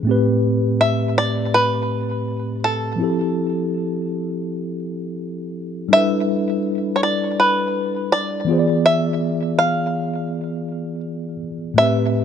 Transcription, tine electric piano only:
0.03 2.93 A2 medium
0.03 2.94 A3 medium
0.07 2.95 C4 medium
0.07 2.96 G4 medium
0.07 2.97 B4 medium
2.96 5.86 F3 medium
2.96 5.87 C4 medium
3.00 5.88 E4 medium
3.00 5.89 G4 medium
3.00 5.90 A4 medium
5.89 8.42 G3 medium
5.89 8.43 D4 medium
5.89 8.44 E4 medium
5.94 8.45 A4 medium
5.94 8.46 B4 medium
8.45 11.35 E3 medium
8.45 11.36 B3 medium
8.45 11.37 F4 medium
8.51 11.38 G#4 medium
8.51 8.57 C5 medium
8.59 11.42 D5 medium
11.74 12.24 A2 medium
11.74 12.24 A3 medium
11.74 12.24 C4 medium
11.80 12.24 G4 medium
11.80 12.24 B4 medium

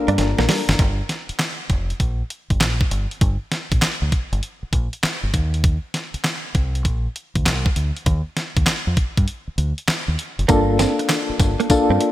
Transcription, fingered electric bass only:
0.08 0.15 G2 loud
0.19 0.33 G1 loud
0.39 0.46 A#1 medium
0.69 0.76 G1 medium
0.79 1.01 G1 loud
1.29 muted fingered electric bass stroke soft
1.70 1.91 F1 medium
2.00 2.22 A#1 medium
2.50 2.58 G1 medium
2.61 2.82 A#1 medium
2.91 3.05 G1 medium
3.21 3.36 G1 loud
3.72 3.79 A#1 medium
4.02 4.09 D2 medium
4.32 4.40 G1 medium
4.63 muted fingered electric bass stroke soft
4.73 4.87 A#1 medium
5.03 muted fingered electric bass stroke soft
5.23 5.31 G1 medium
5.34 5.77 D#2 loud
6.14 muted fingered electric bass stroke soft
6.55 6.85 C2 medium
6.85 7.07 A#1 medium
7.36 7.48 D2 medium
7.46 7.67 C2 medium
7.76 7.90 D2 medium
8.06 8.21 D#2 loud
8.57 8.64 D#2 medium
8.87 8.94 F2 medium
9.18 9.25 G2 medium
9.48 muted fingered electric bass stroke soft
9.58 9.72 D2 medium
9.88 muted fingered electric bass stroke soft
10.08 10.15 D#2 medium
10.39 10.46 F#1 medium
10.49 10.85 G1 loud
11.29 muted fingered electric bass stroke soft
11.40 11.54 G1 loud
11.70 muted fingered electric bass stroke soft
11.90 11.97 G2 loud

